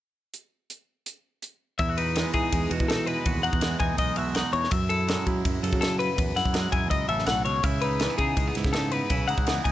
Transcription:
0.34 closed hi-hat
0.70 closed hi-hat
1.06 closed hi-hat
1.42 closed hi-hat
1.79 clean electric guitar E2 E4 E5, fingered electric bass E2, kick, ride
1.89 clean electric guitar F#4
1.97 clean electric guitar D#4 B4, ride
2.16 clean electric guitar E3 G#3, snare, ride
2.33 fingered electric bass E3, clean electric guitar D#4 G#4, kick, ride
2.52 fingered electric bass E2, clean electric guitar G#3, kick, ride
2.70 fingered electric bass E2, clean electric guitar B2 F#4, ride
2.80 fingered electric bass E3, kick
2.88 clean electric guitar D#4 A4, snare, ride
3.06 clean electric guitar G#3 B4, ride
3.25 fingered electric bass D#2, clean electric guitar E2 F#4, kick, ride
3.43 fingered electric bass E2, clean electric guitar D#4 F#5, ride
3.53 fingered electric bass E2, kick
3.61 clean electric guitar E3 G#3, snare, ride
3.80 fingered electric bass E2, clean electric guitar D#4 G#5, kick, ride
3.98 fingered electric bass B1, clean electric guitar G#3 D#5, kick, ride
4.16 clean electric guitar B2 F#4 E5, ride
4.35 clean electric guitar D#4 F#5, snare, ride
4.53 fingered electric bass E2, clean electric guitar C#5, ride
4.64 snare
4.71 clean electric guitar F#2 E5, fingered electric bass F#2, kick, ride
4.89 clean electric guitar E4 A4, ride
5.08 clean electric guitar F#3 G#3, snare, ride
5.27 fingered electric bass F#3, clean electric guitar E4, kick, ride
5.45 fingered electric bass F#2, kick, ride
5.63 fingered electric bass F#2, clean electric guitar C#3 A4, ride
5.73 fingered electric bass F#3, kick
5.81 clean electric guitar E4 A4, snare, ride
5.99 clean electric guitar B4, ride
6.16 fingered electric bass E2, clean electric guitar F#2, kick, ride
6.36 fingered electric bass F#2, clean electric guitar E4 F#5, snare, ride
6.45 fingered electric bass F#2, kick
6.53 clean electric guitar F#3 G#3, snare, ride
6.72 fingered electric bass F#2, clean electric guitar E4 G#5, kick, ride
6.90 fingered electric bass C#2, clean electric guitar D#5, kick, ride
7.09 fingered electric bass A1, clean electric guitar C#3 A4 E5, ride
7.19 snare
7.26 fingered electric bass B1, clean electric guitar A2 F#5, snare, ride
7.45 fingered electric bass C#2, clean electric guitar B2 C#5, ride
7.63 fingered electric bass C#2, clean electric guitar C#3 E4 E5, kick, ride
7.82 clean electric guitar D#4 B4, ride
8.00 clean electric guitar E3 G#3, snare, ride
8.10 clean electric guitar B3
8.18 fingered electric bass C#3, clean electric guitar D#4 G#4, kick, ride
8.37 fingered electric bass C#2, clean electric guitar G#3, kick, ride
8.47 clean electric guitar B3
8.55 fingered electric bass C#2, clean electric guitar G#2 E4, snare, ride
8.64 fingered electric bass C#3, kick, snare
8.73 clean electric guitar D#4 A4, snare, ride
8.92 clean electric guitar B3 B4, ride
9.10 fingered electric bass B1, clean electric guitar C#3 E4, kick, ride
9.28 fingered electric bass C#2, clean electric guitar D#4 F#5, ride
9.38 fingered electric bass C#2, kick
9.47 clean electric guitar E3 B3, snare, ride
9.64 fingered electric bass C#2, clean electric guitar D#4 G#5, kick, ride

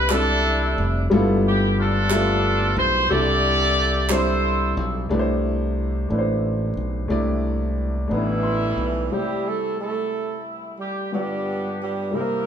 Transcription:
Already playing: fingered electric bass C2, upright piano C3 G3 C4 D4 E4
0.09 upright piano G3 C4 D4 E4 A4, horn section D4 E4 A4, clap
0.78 fingered electric bass F1
1.10 upright piano G2 G3 A3 E4 F4 A4
1.17 upright piano B3
1.48 horn section G4
1.80 horn section D4 F4 A4
2.10 upright piano G3 A3 F4 A4 E5, clap
2.18 upright piano B3
2.77 fingered electric bass B1, horn section C5
3.10 fingered electric bass C2, upright piano C3 G3 C4 D4 E4 A4, horn section G4 A4 D5
4.09 upright piano G3 C4 D4 E4 C5, horn section E4 A4 C5, clap
4.77 fingered electric bass B1
5.09 fingered electric bass C2, upright piano C3 A3 D4 E4 B4
5.19 upright piano C5
6.09 fingered electric bass A1, upright piano A3 D4 E4 B4
6.19 upright piano C5
6.77 fingered electric bass B1
7.08 fingered electric bass C2, upright piano C3 A3 D4 E4 D5
8.08 fingered electric bass A1, upright piano A3 B3 D4 D#4
8.12 horn section G3 A3 E4
8.16 tenor saxophone E3, upright piano E4
8.43 upright piano C6
8.78 fingered electric bass B1
9.08 upright piano C2 C3 A3 D#4
9.12 tenor saxophone G3, horn section E4 G4, upright piano G4 C5
9.17 upright piano E4
9.47 tenor saxophone A3, horn section A4
9.80 tenor saxophone A3, horn section E4 A4
10.79 tenor saxophone G3, horn section G4
11.11 upright piano G1 G2 B3 F4 G4 D5, tenor saxophone G3, horn section B3 D4 G4
11.80 tenor saxophone G3, horn section G4
12.11 upright piano C2 C3 A#3 E4 G4 A#4, horn section E4 G4 A#4
12.16 tenor saxophone A#3
12.20 upright piano C5

